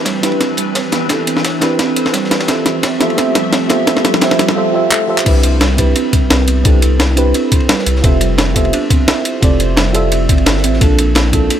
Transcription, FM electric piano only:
Already playing: C4 D4 E4 G4 B4
0.22 C4 D4 E4 G4 B4
1.08 C4 D4 E4 G4 A4
1.60 C4 D4 E4 G4 B4
2.47 F4 G4 A4 C5 E5
2.99 F4 G4 A4 C5 E5
3.16 F4 G4 A4 C5 E5
3.68 F4 G4 A4 C5 E5
3.86 F4 G4 A4 C5 E5
4.21 F4 G4 A4 C5 E5
4.55 F4 G4 A4 C5 E5
4.73 F4 G4 A4 C5 E5
4.90 F4 G4 A4 C5 E5
5.07 F4 G4 A4 C5 E5
5.25 C4 D4 E4 G4 B4
5.77 C4 D4 E4 G4 B4
6.64 C4 D4 E4 G4 A4
7.16 C4 D4 E4 G4 B4
8.02 F4 G4 A4 C5 E5
8.54 F4 G4 A4 C5 E5
9.41 F4 G4 A4 C5 D5
9.93 F4 G4 A4 C5 E5
10.79 A#3 C4 D4 F4 A4
11.32 A#3 C4 D4 F4 A4

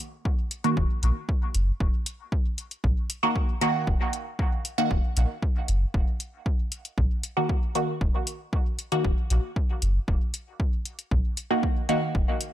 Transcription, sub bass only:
0.77 D#1
1.03 A#1
1.55 F#1
1.80 D#1
2.84 A#1
3.87 D#1
4.91 D#1
5.17 A#1
5.68 F#1
5.94 D#1
6.98 A#1
8.01 D#1
9.05 D#1
9.30 A#1
9.82 F#1
10.08 D#1
11.11 A#1
12.15 D#1

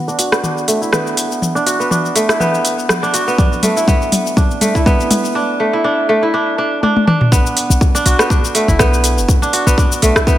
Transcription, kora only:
Already playing: B3 F#4 B4
0.08 D4
0.19 F#4
0.32 B3
0.44 D4
0.68 A3
0.82 E4
0.93 B3
1.55 D4
1.66 F#4
1.80 B3
1.91 D4
2.15 A3
2.29 E4
2.40 B3
3.03 D4
3.14 F#4
3.28 B3
3.39 D4
3.63 A3
3.77 E4
3.88 B3
4.37 D4
4.61 A3
4.75 E4
4.86 B3
5.35 D4
5.60 A3
5.73 E4
5.84 D4
6.09 A3
6.23 E4
6.34 D4
6.58 D4
6.83 D4
7.07 D4
7.32 B3
7.95 D4
8.06 F#4
8.19 B3
8.30 D4
8.55 A3
8.68 E4
8.79 B3
9.42 D4
9.53 F#4
9.67 B3
9.78 D4
10.02 A3
10.16 E4
10.27 B3

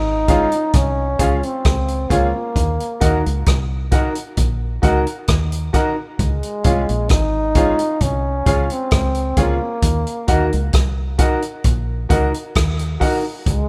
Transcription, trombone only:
Already playing: D#4
0.76 C#4
1.45 C4
2.12 A#3
6.20 G#3
7.11 D#4
8.02 C#4
8.72 C4
9.40 A#3
13.47 G#3

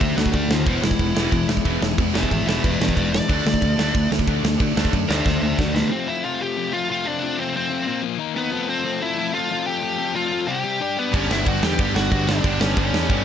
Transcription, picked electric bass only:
0.01 D2
0.18 D2
0.34 D2
0.67 E1
0.82 E1
0.99 E1
1.15 E1
1.32 E1
1.48 E1
1.65 E1
1.81 E1
1.98 E2
2.14 E1
2.31 G#1
2.47 E1
2.64 E1
2.79 E1
2.97 E1
3.29 D2
3.45 D2
3.62 D2
3.78 D2
3.95 D2
4.11 D2
4.27 D2
4.44 D2
4.60 D3
4.76 D2
4.93 F#2
5.09 D2
5.26 D2
5.42 D2
5.58 D2
11.14 G1
11.30 G1
11.47 G1
11.63 E2
11.79 G2
11.94 G1
12.12 G1
12.44 G1
12.60 G1
12.77 G1
12.93 E2
13.10 G2

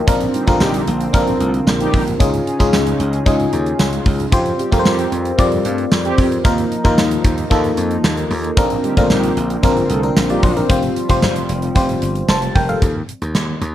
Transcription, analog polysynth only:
0.34 G3 D#4 G4
0.48 A3 F4 A4
0.61 G3 D#4 G4
1.27 D3 C4 F4
1.41 A3 F4 A4
1.80 G3 D#4 G4
4.59 C4 G4
4.72 A3 F4 A4
4.85 C4 G4
5.52 C3 G3 F4
5.65 A3 F4 A4
6.05 C4 G4
8.84 G3 D#4 G4
8.97 A3 F4 A4
9.10 G3 D#4 G4
9.77 D3 C4 F4
9.90 A3 F4 A4
10.30 G3 D#4 G4

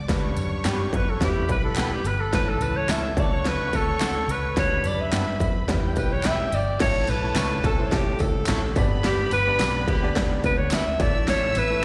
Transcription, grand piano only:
0.08 G3 D4 B4
1.20 F#3 E4 B4
1.27 G3
2.33 E3 B3 A4
2.40 C#4
3.16 E3 D4 A4
3.23 F#3
4.56 G3 D4 B4
5.68 G3 E4 B4
6.80 A3 C#4 E4 C#5
7.22 A3 C#4 E4 C#5
7.78 A3 C#4 E4 C5
7.86 C#5
8.76 B3 D4 G4 D5
9.46 B3 D4 G4 D5
10.02 B3 D4 G4 D5
11.00 A3 C#4 E4 C#5
11.70 A3 C#4 E4 C#5

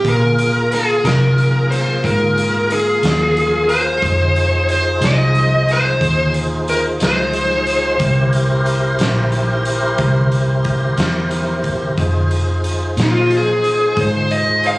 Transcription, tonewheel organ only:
0.04 A#3 F4 G#4 A#4
4.03 D#4 F4 G#4 C5
7.99 E4 G4 A#4 C5
11.97 D#4 F4 G#4 C5

